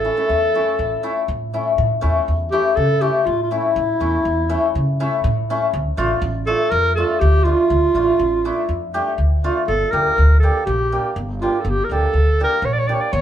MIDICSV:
0, 0, Header, 1, 4, 480
1, 0, Start_track
1, 0, Tempo, 493827
1, 1732, Time_signature, 4, 2, 24, 8
1, 12844, End_track
2, 0, Start_track
2, 0, Title_t, "Clarinet"
2, 0, Program_c, 0, 71
2, 0, Note_on_c, 0, 69, 104
2, 1259, Note_off_c, 0, 69, 0
2, 2445, Note_on_c, 0, 67, 103
2, 2680, Note_on_c, 0, 69, 111
2, 2694, Note_off_c, 0, 67, 0
2, 2927, Note_on_c, 0, 67, 92
2, 2942, Note_off_c, 0, 69, 0
2, 3169, Note_on_c, 0, 65, 90
2, 3184, Note_off_c, 0, 67, 0
2, 3327, Note_off_c, 0, 65, 0
2, 3333, Note_on_c, 0, 65, 64
2, 3421, Note_on_c, 0, 64, 94
2, 3435, Note_off_c, 0, 65, 0
2, 4861, Note_off_c, 0, 64, 0
2, 6287, Note_on_c, 0, 69, 110
2, 6516, Note_on_c, 0, 70, 127
2, 6531, Note_off_c, 0, 69, 0
2, 6752, Note_off_c, 0, 70, 0
2, 6758, Note_on_c, 0, 69, 93
2, 6995, Note_on_c, 0, 67, 104
2, 7009, Note_off_c, 0, 69, 0
2, 7232, Note_on_c, 0, 65, 101
2, 7247, Note_off_c, 0, 67, 0
2, 8680, Note_off_c, 0, 65, 0
2, 9409, Note_on_c, 0, 69, 110
2, 9631, Note_on_c, 0, 70, 125
2, 9646, Note_off_c, 0, 69, 0
2, 10101, Note_off_c, 0, 70, 0
2, 10107, Note_on_c, 0, 69, 90
2, 10339, Note_off_c, 0, 69, 0
2, 10361, Note_on_c, 0, 67, 95
2, 10808, Note_off_c, 0, 67, 0
2, 11098, Note_on_c, 0, 65, 93
2, 11276, Note_on_c, 0, 69, 63
2, 11290, Note_off_c, 0, 65, 0
2, 11365, Note_on_c, 0, 67, 97
2, 11380, Note_off_c, 0, 69, 0
2, 11511, Note_on_c, 0, 70, 76
2, 11525, Note_off_c, 0, 67, 0
2, 11591, Note_on_c, 0, 69, 115
2, 11606, Note_off_c, 0, 70, 0
2, 12055, Note_off_c, 0, 69, 0
2, 12090, Note_on_c, 0, 70, 110
2, 12296, Note_on_c, 0, 73, 90
2, 12311, Note_off_c, 0, 70, 0
2, 12374, Note_on_c, 0, 74, 98
2, 12389, Note_off_c, 0, 73, 0
2, 12432, Note_on_c, 0, 73, 92
2, 12447, Note_off_c, 0, 74, 0
2, 12511, Note_on_c, 0, 74, 88
2, 12526, Note_off_c, 0, 73, 0
2, 12577, Note_on_c, 0, 73, 82
2, 12592, Note_off_c, 0, 74, 0
2, 12642, Note_on_c, 0, 74, 89
2, 12657, Note_off_c, 0, 73, 0
2, 12754, Note_on_c, 0, 73, 105
2, 12769, Note_off_c, 0, 74, 0
2, 12844, Note_off_c, 0, 73, 0
2, 12844, End_track
3, 0, Start_track
3, 0, Title_t, "Hammered dulcimer"
3, 0, Program_c, 1, 15
3, 43, Note_on_c, 1, 61, 60
3, 45, Note_on_c, 1, 64, 77
3, 103, Note_off_c, 1, 61, 0
3, 104, Note_off_c, 1, 64, 0
3, 165, Note_on_c, 1, 57, 68
3, 169, Note_on_c, 1, 61, 66
3, 173, Note_on_c, 1, 64, 69
3, 284, Note_off_c, 1, 57, 0
3, 287, Note_off_c, 1, 61, 0
3, 288, Note_off_c, 1, 64, 0
3, 532, Note_on_c, 1, 57, 75
3, 538, Note_on_c, 1, 61, 67
3, 539, Note_on_c, 1, 64, 83
3, 650, Note_off_c, 1, 57, 0
3, 652, Note_off_c, 1, 61, 0
3, 652, Note_off_c, 1, 64, 0
3, 1002, Note_on_c, 1, 57, 81
3, 1006, Note_on_c, 1, 64, 99
3, 1009, Note_on_c, 1, 61, 65
3, 1126, Note_off_c, 1, 57, 0
3, 1128, Note_off_c, 1, 64, 0
3, 1129, Note_off_c, 1, 61, 0
3, 1491, Note_on_c, 1, 57, 67
3, 1495, Note_on_c, 1, 61, 69
3, 1497, Note_on_c, 1, 64, 85
3, 1613, Note_off_c, 1, 57, 0
3, 1613, Note_off_c, 1, 64, 0
3, 1614, Note_off_c, 1, 61, 0
3, 1956, Note_on_c, 1, 57, 89
3, 1961, Note_on_c, 1, 61, 83
3, 1965, Note_on_c, 1, 64, 89
3, 2087, Note_off_c, 1, 57, 0
3, 2088, Note_off_c, 1, 61, 0
3, 2088, Note_off_c, 1, 64, 0
3, 2453, Note_on_c, 1, 57, 80
3, 2454, Note_on_c, 1, 61, 68
3, 2460, Note_on_c, 1, 64, 87
3, 2576, Note_off_c, 1, 57, 0
3, 2576, Note_off_c, 1, 61, 0
3, 2577, Note_off_c, 1, 64, 0
3, 2926, Note_on_c, 1, 57, 79
3, 2928, Note_on_c, 1, 61, 69
3, 2931, Note_on_c, 1, 64, 95
3, 3052, Note_off_c, 1, 57, 0
3, 3053, Note_off_c, 1, 61, 0
3, 3055, Note_off_c, 1, 64, 0
3, 3411, Note_on_c, 1, 57, 80
3, 3417, Note_on_c, 1, 61, 68
3, 3419, Note_on_c, 1, 64, 90
3, 3537, Note_off_c, 1, 57, 0
3, 3538, Note_off_c, 1, 61, 0
3, 3538, Note_off_c, 1, 64, 0
3, 3890, Note_on_c, 1, 57, 75
3, 3895, Note_on_c, 1, 61, 62
3, 3896, Note_on_c, 1, 64, 81
3, 4015, Note_off_c, 1, 57, 0
3, 4017, Note_off_c, 1, 61, 0
3, 4018, Note_off_c, 1, 64, 0
3, 4368, Note_on_c, 1, 64, 95
3, 4370, Note_on_c, 1, 57, 97
3, 4373, Note_on_c, 1, 61, 81
3, 4494, Note_off_c, 1, 64, 0
3, 4495, Note_off_c, 1, 57, 0
3, 4496, Note_off_c, 1, 61, 0
3, 4861, Note_on_c, 1, 57, 87
3, 4861, Note_on_c, 1, 61, 86
3, 4865, Note_on_c, 1, 64, 107
3, 4981, Note_off_c, 1, 61, 0
3, 4981, Note_off_c, 1, 64, 0
3, 4982, Note_off_c, 1, 57, 0
3, 5346, Note_on_c, 1, 57, 88
3, 5348, Note_on_c, 1, 61, 86
3, 5352, Note_on_c, 1, 64, 97
3, 5464, Note_off_c, 1, 57, 0
3, 5464, Note_off_c, 1, 61, 0
3, 5465, Note_off_c, 1, 64, 0
3, 5806, Note_on_c, 1, 57, 92
3, 5811, Note_on_c, 1, 62, 73
3, 5813, Note_on_c, 1, 65, 109
3, 5934, Note_off_c, 1, 57, 0
3, 5935, Note_off_c, 1, 65, 0
3, 5936, Note_off_c, 1, 62, 0
3, 6287, Note_on_c, 1, 57, 81
3, 6291, Note_on_c, 1, 62, 72
3, 6293, Note_on_c, 1, 65, 70
3, 6413, Note_off_c, 1, 57, 0
3, 6415, Note_off_c, 1, 62, 0
3, 6416, Note_off_c, 1, 65, 0
3, 6777, Note_on_c, 1, 57, 70
3, 6783, Note_on_c, 1, 62, 75
3, 6783, Note_on_c, 1, 65, 88
3, 6897, Note_off_c, 1, 57, 0
3, 6900, Note_off_c, 1, 65, 0
3, 6901, Note_off_c, 1, 62, 0
3, 7241, Note_on_c, 1, 62, 70
3, 7243, Note_on_c, 1, 57, 66
3, 7245, Note_on_c, 1, 65, 79
3, 7369, Note_off_c, 1, 62, 0
3, 7370, Note_off_c, 1, 57, 0
3, 7371, Note_off_c, 1, 65, 0
3, 7725, Note_on_c, 1, 57, 76
3, 7727, Note_on_c, 1, 62, 64
3, 7733, Note_on_c, 1, 65, 84
3, 7851, Note_off_c, 1, 62, 0
3, 7852, Note_off_c, 1, 57, 0
3, 7852, Note_off_c, 1, 65, 0
3, 8213, Note_on_c, 1, 57, 79
3, 8215, Note_on_c, 1, 62, 84
3, 8220, Note_on_c, 1, 64, 96
3, 8333, Note_off_c, 1, 57, 0
3, 8334, Note_off_c, 1, 62, 0
3, 8337, Note_off_c, 1, 64, 0
3, 8691, Note_on_c, 1, 67, 104
3, 8696, Note_on_c, 1, 57, 80
3, 8696, Note_on_c, 1, 62, 81
3, 8811, Note_off_c, 1, 67, 0
3, 8814, Note_off_c, 1, 57, 0
3, 8814, Note_off_c, 1, 62, 0
3, 9175, Note_on_c, 1, 62, 70
3, 9177, Note_on_c, 1, 57, 85
3, 9179, Note_on_c, 1, 65, 94
3, 9293, Note_off_c, 1, 62, 0
3, 9294, Note_off_c, 1, 65, 0
3, 9295, Note_off_c, 1, 57, 0
3, 9649, Note_on_c, 1, 58, 71
3, 9651, Note_on_c, 1, 62, 65
3, 9653, Note_on_c, 1, 67, 86
3, 9769, Note_off_c, 1, 58, 0
3, 9769, Note_off_c, 1, 62, 0
3, 9771, Note_off_c, 1, 67, 0
3, 10136, Note_on_c, 1, 58, 72
3, 10137, Note_on_c, 1, 62, 67
3, 10143, Note_on_c, 1, 67, 91
3, 10251, Note_off_c, 1, 62, 0
3, 10252, Note_off_c, 1, 58, 0
3, 10255, Note_off_c, 1, 67, 0
3, 10617, Note_on_c, 1, 58, 76
3, 10618, Note_on_c, 1, 67, 80
3, 10619, Note_on_c, 1, 62, 62
3, 10730, Note_off_c, 1, 67, 0
3, 10732, Note_off_c, 1, 58, 0
3, 10732, Note_off_c, 1, 62, 0
3, 11098, Note_on_c, 1, 58, 75
3, 11104, Note_on_c, 1, 62, 69
3, 11107, Note_on_c, 1, 67, 84
3, 11212, Note_off_c, 1, 58, 0
3, 11213, Note_off_c, 1, 62, 0
3, 11213, Note_off_c, 1, 67, 0
3, 11573, Note_on_c, 1, 58, 69
3, 11578, Note_on_c, 1, 62, 68
3, 11582, Note_on_c, 1, 67, 82
3, 11688, Note_off_c, 1, 58, 0
3, 11689, Note_off_c, 1, 62, 0
3, 11690, Note_off_c, 1, 67, 0
3, 12054, Note_on_c, 1, 58, 72
3, 12058, Note_on_c, 1, 62, 71
3, 12061, Note_on_c, 1, 67, 84
3, 12167, Note_off_c, 1, 58, 0
3, 12169, Note_off_c, 1, 62, 0
3, 12170, Note_off_c, 1, 67, 0
3, 12527, Note_on_c, 1, 58, 77
3, 12530, Note_on_c, 1, 62, 73
3, 12531, Note_on_c, 1, 67, 84
3, 12643, Note_off_c, 1, 58, 0
3, 12643, Note_off_c, 1, 67, 0
3, 12644, Note_off_c, 1, 62, 0
3, 12844, End_track
4, 0, Start_track
4, 0, Title_t, "Upright bass"
4, 0, Program_c, 2, 32
4, 286, Note_on_c, 2, 40, 86
4, 575, Note_off_c, 2, 40, 0
4, 767, Note_on_c, 2, 33, 96
4, 912, Note_off_c, 2, 33, 0
4, 1246, Note_on_c, 2, 45, 100
4, 1537, Note_off_c, 2, 45, 0
4, 1731, Note_on_c, 2, 45, 105
4, 1876, Note_off_c, 2, 45, 0
4, 1975, Note_on_c, 2, 40, 80
4, 2119, Note_off_c, 2, 40, 0
4, 2216, Note_on_c, 2, 40, 90
4, 2505, Note_off_c, 2, 40, 0
4, 2691, Note_on_c, 2, 49, 97
4, 2982, Note_off_c, 2, 49, 0
4, 3174, Note_on_c, 2, 45, 99
4, 3464, Note_off_c, 2, 45, 0
4, 3654, Note_on_c, 2, 45, 101
4, 3800, Note_off_c, 2, 45, 0
4, 3896, Note_on_c, 2, 40, 85
4, 4041, Note_off_c, 2, 40, 0
4, 4132, Note_on_c, 2, 40, 96
4, 4423, Note_off_c, 2, 40, 0
4, 4620, Note_on_c, 2, 49, 96
4, 4908, Note_off_c, 2, 49, 0
4, 5093, Note_on_c, 2, 45, 108
4, 5383, Note_off_c, 2, 45, 0
4, 5574, Note_on_c, 2, 38, 105
4, 5719, Note_off_c, 2, 38, 0
4, 5812, Note_on_c, 2, 33, 95
4, 5958, Note_off_c, 2, 33, 0
4, 6042, Note_on_c, 2, 33, 108
4, 6335, Note_off_c, 2, 33, 0
4, 6527, Note_on_c, 2, 41, 111
4, 6818, Note_off_c, 2, 41, 0
4, 7010, Note_on_c, 2, 38, 111
4, 7300, Note_off_c, 2, 38, 0
4, 7487, Note_on_c, 2, 38, 106
4, 7633, Note_off_c, 2, 38, 0
4, 7722, Note_on_c, 2, 33, 83
4, 7870, Note_off_c, 2, 33, 0
4, 7964, Note_on_c, 2, 33, 101
4, 8255, Note_off_c, 2, 33, 0
4, 8443, Note_on_c, 2, 41, 94
4, 8733, Note_off_c, 2, 41, 0
4, 8922, Note_on_c, 2, 38, 94
4, 9212, Note_off_c, 2, 38, 0
4, 9410, Note_on_c, 2, 31, 97
4, 9553, Note_off_c, 2, 31, 0
4, 9653, Note_on_c, 2, 38, 96
4, 9795, Note_off_c, 2, 38, 0
4, 9895, Note_on_c, 2, 38, 100
4, 10180, Note_off_c, 2, 38, 0
4, 10371, Note_on_c, 2, 34, 113
4, 10657, Note_off_c, 2, 34, 0
4, 10848, Note_on_c, 2, 31, 104
4, 11134, Note_off_c, 2, 31, 0
4, 11319, Note_on_c, 2, 31, 100
4, 11464, Note_off_c, 2, 31, 0
4, 11561, Note_on_c, 2, 38, 85
4, 11705, Note_off_c, 2, 38, 0
4, 11795, Note_on_c, 2, 38, 86
4, 12084, Note_off_c, 2, 38, 0
4, 12268, Note_on_c, 2, 34, 101
4, 12558, Note_off_c, 2, 34, 0
4, 12761, Note_on_c, 2, 31, 116
4, 12844, Note_off_c, 2, 31, 0
4, 12844, End_track
0, 0, End_of_file